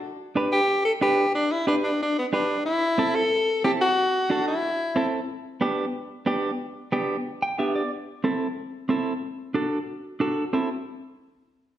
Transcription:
<<
  \new Staff \with { instrumentName = "Clean electric guitar" } { \time 4/4 \key g \major \tempo 4 = 183 r4 <d' g' b'>8 r4. <d' g' b'>8 r8 | r4 <d' g' b'>8 r4. <d' g' b'>8 r8 | r4 <c' e' a'>8 r4. <c' e' a'>8 r8 | r4 <d' fis' a'>8 r4. <c' e' a'>8 r8 |
r4 <b d' g'>8 r4. <b d' g'>8 r8 | r4 <b d' g'>8 r4 g''8 <b d' g' e''>8 d''8 | r4 <c' e' a'>8 r4. <c' e' a'>8 r8 | r4 <d' fis' a'>8 r4. <d' fis' a'>8 r8 |
<c' e' a'>8 r2. r8 | }
  \new Staff \with { instrumentName = "Alto saxophone" } { \time 4/4 \key g \major r4. g'4 a'8 g'4 | d'8 e'8 d'8 d'8 d'8 b8 d'4 | e'4. a'4. g'8 fis'8~ | fis'4. e'2 r8 |
r1 | r1 | r1 | r1 |
r1 | }
>>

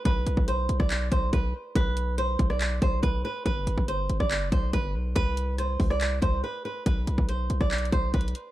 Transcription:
<<
  \new Staff \with { instrumentName = "Nylon-string guitar" } { \time 4/4 \key g \major \tempo 4 = 141 b'4 c''8. d''8. c''8 b'8 r8 | b'4 c''8. d''8. c''8 b'8 b'8 | b'4 c''8. d''8. c''8 b'8 r8 | b'4 c''8. d''8. c''8 b'8 b'8 |
b'4 c''8. d''8. c''8 b'8 r8 | }
  \new Staff \with { instrumentName = "808-style bass" } { \clef bass \time 4/4 \key g \major b,,8 b,,16 b,,8. b,,16 b,,8. b,,8 b,,8 r8 | b,,4. b,,4 b,,8 b,,8 r8 | g,,8 g,,16 g,,8. g,,16 g,,8 fis,,16 b,,8 g,,8 b,,8 | c,4. c,4 c,8 r4 |
b,,8 b,,16 b,,8. b,,16 b,,8. b,,8 b,,8 r8 | }
  \new DrumStaff \with { instrumentName = "Drums" } \drummode { \time 4/4 <hh bd>8 hh16 bd16 hh8 hh16 <bd ss>16 <hc hh>8 <hh bd>8 <hh bd>4 | <hh bd>8 hh8 hh8 <hh bd>16 ss16 <hc hh>8 <hh bd>8 <hh bd>4 | <hh bd>8 hh16 bd16 hh8 hh16 <bd ss>16 <hc hh>8 <hh bd>8 <hh bd>4 | <hh bd>8 hh8 <hh ss>8 <hho bd>16 ss16 <hc hh>8 <hh bd>8 r4 |
<hh bd>8 hh16 bd16 hh8 hh16 <bd ss>16 \tuplet 3/2 { <hc hh>16 hh16 hh16 <hh bd>16 r16 r16 <hh bd>16 hh16 hh16 hh16 r16 r16 } | }
>>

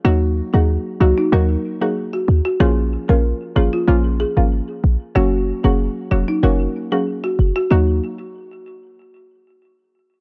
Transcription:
<<
  \new Staff \with { instrumentName = "Marimba" } { \time 4/4 \key ees \minor \tempo 4 = 94 ges'16 r8 aes'16 r8 ges'16 ees'16 bes'16 r8 aes'16 r16 ges'16 r16 ges'16 | aes'16 r8 bes'16 r8 aes'16 f'16 r8 aes'16 r4 r16 | ges'16 r8 aes'16 r8 ges'16 ees'16 bes'16 r8 aes'16 r16 ges'16 r16 ges'16 | ges'8 r2. r8 | }
  \new Staff \with { instrumentName = "Synth pluck" } { \time 4/4 \key ees \minor <ges bes ees' ges'>8. <ges bes ees' ges'>8. <ges bes ees' ges'>8 <ges bes ees' ges'>8. <ges bes ees' ges'>16 r4 | <f bes des' f'>8. <f bes des' f'>16 r8 <f bes des' f'>16 r16 <f bes des' f'>8. <f bes des' f'>16 r4 | <ges bes des' ges'>8. <ges bes des' ges'>8. <ges bes des' ges'>8 <ges bes des' ges'>8. <ges bes des' ges'>16 r4 | <ges bes ees' ges'>8 r2. r8 | }
  \new Staff \with { instrumentName = "808-style bass" } { \clef bass \time 4/4 \key ees \minor ees,8. ees,8 r16 des,16 r16 ees,8 r4 ees,16 r16 | bes,,8. bes,,8 r16 aes,,16 r16 bes,,8. aes,,8 r16 bes,,16 r16 | ges,,8. ges,,8 r16 f,,16 r16 ges,,8 r4 ges,,16 r16 | ees,8 r2. r8 | }
>>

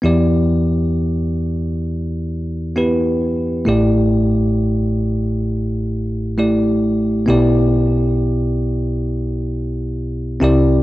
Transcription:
<<
  \new Staff \with { instrumentName = "Tine electric piano" } { \time 4/4 \key e \minor \tempo 4 = 67 <b e' g' d''>2. <b e' g' b'>4 | <a e' g' d''>2. <a e' g' d''>4 | <b e' g' d''>2.~ <b e' g' d''>8 <c' e' g' d''>8 | }
  \new Staff \with { instrumentName = "Tine electric piano" } { \clef bass \time 4/4 \key e \minor <e, e>1 | <a,, a,>1 | <b,, b,>2.~ <b,, b,>8 <c, c>8 | }
>>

